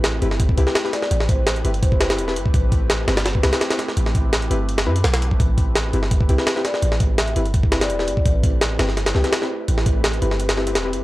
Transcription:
Already playing: A1
0.04 snare, closed hi-hat
0.22 G1 C4 E4 G4 B4, closed hi-hat
0.31 snare
0.40 kick, closed hi-hat
0.49 kick
0.57 C2 C4 E4 G4 B4, closed hi-hat
0.67 C4 E4 G4 B4, snare
0.75 snare, closed hi-hat
0.85 C4 E4 G4 B4, snare
0.93 D5, snare, closed hi-hat
1.02 D5, snare
1.11 A1, closed hi-hat
1.20 snare
1.29 C5, kick, closed hi-hat
1.47 snare, closed hi-hat
1.56 closed hi-hat
1.64 G1 C4 E4 G4 B4, closed hi-hat
1.74 closed hi-hat
1.83 C5, kick, closed hi-hat
1.92 kick
2.00 C4 E4 G4 B4, snare, closed hi-hat
2.10 C4 E4 G4 B4, snare, closed hi-hat
2.18 E1, closed hi-hat
2.27 C4 E4 G4 B4, snare
2.36 G1, closed hi-hat
2.46 kick
2.54 A1, kick, closed hi-hat
2.72 kick, closed hi-hat
2.90 snare, closed hi-hat
3.07 G1 C4 E4 G4 B4, snare, closed hi-hat
3.17 snare, closed hi-hat
3.26 snare, closed hi-hat
3.35 kick
3.43 C2 C4 E4 G4 B4, snare, closed hi-hat
3.53 C4 E4 G4 B4, snare, closed hi-hat
3.61 snare, closed hi-hat
3.70 C4 E4 G4 B4, snare, closed hi-hat
3.79 snare, closed hi-hat
3.88 snare
3.97 A1, closed hi-hat
4.06 snare
4.15 kick, closed hi-hat
4.33 snare, closed hi-hat
4.42 closed hi-hat
4.50 G1 C4 E4 G4 B4, closed hi-hat
4.69 closed hi-hat
4.78 snare, closed hi-hat
4.86 F#2 C4 E4 G4 B4
4.96 closed hi-hat
5.04 B1, snare, closed hi-hat
5.14 snare, closed hi-hat
5.22 closed hi-hat
5.31 kick
5.40 A1, kick, closed hi-hat
5.58 kick, closed hi-hat
5.75 snare, closed hi-hat
5.93 G1 C4 E4 G4 B4, closed hi-hat
6.03 snare
6.11 kick, closed hi-hat
6.21 kick
6.29 C2 C4 E4 G4 B4, closed hi-hat
6.38 C4 E4 G4 B4, snare
6.47 snare, closed hi-hat
6.56 C4 E4 G4 B4, snare
6.65 D5, snare, closed hi-hat
6.74 D5, snare
6.82 A1, closed hi-hat
6.92 snare
7.00 kick, closed hi-hat
7.18 E5, snare, closed hi-hat
7.28 closed hi-hat
7.36 G1 C4 E4 G4 B4, closed hi-hat
7.46 closed hi-hat
7.54 kick, closed hi-hat
7.63 kick
7.72 C4 E4 G4 B4, snare, closed hi-hat
7.81 C4 E4 G4 B4 D5, snare, closed hi-hat
7.90 E1, closed hi-hat
7.99 C4 E4 G4 B4, snare
8.08 G1, closed hi-hat
8.17 kick
8.26 A1, kick, closed hi-hat
8.43 kick, closed hi-hat
8.61 snare, closed hi-hat
8.79 G1 C4 E4 G4 B4, snare, closed hi-hat
8.89 snare
8.97 snare, closed hi-hat
9.06 snare, closed hi-hat
9.15 C2 C4 E4 G4 B4, snare
9.24 C4 E4 G4 B4, snare, closed hi-hat
9.33 snare, closed hi-hat
9.42 C4 E4 G4 B4, snare
9.68 A1, closed hi-hat
9.78 snare
9.86 kick, closed hi-hat
10.04 snare, closed hi-hat
10.13 closed hi-hat
10.22 G1 C4 E4 G4 B4, closed hi-hat
10.31 snare
10.40 closed hi-hat
10.49 snare, closed hi-hat
10.57 C4 E4 G4 B4, snare
10.67 C4 E4 G4 B4, closed hi-hat
10.75 E1, snare, closed hi-hat
10.85 C4 E4 G4 B4
10.93 G1, closed hi-hat

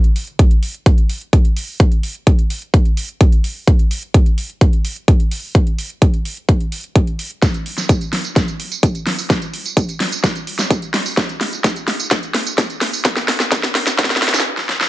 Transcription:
0.04 closed hi-hat
0.16 open hi-hat
0.27 closed hi-hat
0.39 kick, closed hi-hat
0.51 closed hi-hat
0.63 open hi-hat
0.74 closed hi-hat
0.86 kick, closed hi-hat
0.98 closed hi-hat
1.10 open hi-hat
1.21 closed hi-hat
1.33 kick, closed hi-hat
1.45 closed hi-hat
1.57 open hi-hat
1.80 kick, closed hi-hat
1.92 closed hi-hat
2.03 open hi-hat
2.15 closed hi-hat
2.27 kick, closed hi-hat
2.39 closed hi-hat
2.50 open hi-hat
2.62 closed hi-hat
2.74 kick, closed hi-hat
2.85 closed hi-hat
2.97 open hi-hat
3.09 closed hi-hat
3.21 kick, closed hi-hat
3.32 closed hi-hat
3.44 open hi-hat
3.68 kick, closed hi-hat
3.79 closed hi-hat
3.91 open hi-hat
4.03 closed hi-hat
4.14 kick, closed hi-hat
4.26 closed hi-hat
4.38 open hi-hat
4.50 closed hi-hat
4.61 kick, closed hi-hat
4.73 closed hi-hat
4.85 open hi-hat
4.96 closed hi-hat
5.08 kick, closed hi-hat
5.20 closed hi-hat
5.31 open hi-hat
5.55 kick, closed hi-hat
5.67 closed hi-hat
5.78 open hi-hat
5.90 closed hi-hat
6.02 kick, closed hi-hat
6.14 closed hi-hat
6.25 open hi-hat
6.37 closed hi-hat
6.49 kick, closed hi-hat
6.60 closed hi-hat
6.72 open hi-hat
6.84 closed hi-hat
6.96 kick, closed hi-hat
7.07 closed hi-hat
7.19 open hi-hat
7.31 closed hi-hat
7.42 kick, snare, closed hi-hat, tambourine
7.54 closed hi-hat, tambourine
7.66 open hi-hat
7.78 snare, closed hi-hat, tambourine
7.89 kick, closed hi-hat, tambourine
8.01 closed hi-hat, tambourine
8.13 snare, open hi-hat
8.24 closed hi-hat, tambourine
8.36 kick, snare, closed hi-hat, tambourine
8.48 closed hi-hat, tambourine
8.60 open hi-hat
8.71 closed hi-hat, tambourine
8.83 kick, closed hi-hat, tambourine
8.95 closed hi-hat, tambourine
9.07 snare, open hi-hat
9.19 tambourine
9.30 kick, snare, closed hi-hat, tambourine
9.42 closed hi-hat, tambourine
9.54 open hi-hat
9.65 closed hi-hat, tambourine
9.77 kick, closed hi-hat, tambourine
9.89 closed hi-hat, tambourine
10.00 snare, open hi-hat
10.12 closed hi-hat, tambourine
10.24 kick, snare, closed hi-hat, tambourine
10.35 closed hi-hat, tambourine
10.47 open hi-hat
10.59 snare, closed hi-hat, tambourine
10.71 kick, closed hi-hat, tambourine
10.82 closed hi-hat, tambourine
10.94 snare, open hi-hat
11.06 tambourine
11.17 kick, snare, closed hi-hat, tambourine
11.29 closed hi-hat, tambourine
11.41 snare, open hi-hat
11.53 closed hi-hat, tambourine
11.64 kick, snare, closed hi-hat, tambourine
11.76 closed hi-hat, tambourine
11.88 snare, open hi-hat
11.99 closed hi-hat, tambourine
12.11 kick, snare, closed hi-hat, tambourine
12.23 closed hi-hat, tambourine
12.35 snare, open hi-hat
12.46 closed hi-hat, tambourine
12.58 kick, snare, closed hi-hat, tambourine
12.70 closed hi-hat, tambourine
12.81 snare, open hi-hat
12.93 tambourine
13.05 kick, snare, closed hi-hat, tambourine
13.17 snare, closed hi-hat, tambourine
13.28 snare, open hi-hat
13.40 snare, closed hi-hat, tambourine
13.52 kick, snare, closed hi-hat, tambourine
13.63 snare, closed hi-hat, tambourine
13.75 snare, open hi-hat
13.87 snare, closed hi-hat, tambourine
13.99 kick, snare, closed hi-hat, tambourine
14.04 snare
14.10 snare, closed hi-hat, tambourine
14.16 snare
14.22 snare, open hi-hat
14.28 snare
14.34 snare, closed hi-hat, tambourine
14.40 snare
14.57 snare
14.69 snare
14.81 snare

